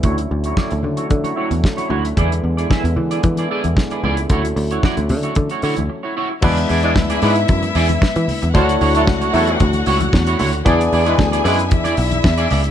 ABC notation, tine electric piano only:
X:1
M:4/4
L:1/8
Q:1/4=113
K:Emix
V:1 name="Tine electric piano"
z8 | z8 | z8 | [F,G,B,DEB]8 |
[A,DEFc]8 | [B,DEGd]8 |]